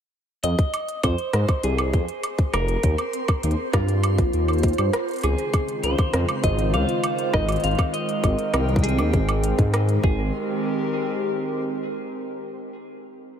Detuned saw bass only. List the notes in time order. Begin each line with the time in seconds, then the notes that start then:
0.44 F2
1.04 F2
1.34 G#2
1.64 C2
1.94 F2
2.54 F1
2.84 D#2
3.44 D#2
3.74 G2
4.18 A#1
4.33 D#2
4.78 G2
5.24 C#2
5.84 C#2
6.14 F2
6.44 G#1
6.74 C#2
7.34 G#1
7.64 G#1
8.24 G#1
8.54 C2
8.99 D#2
9.14 G#1
9.59 G#2
10.04 G#1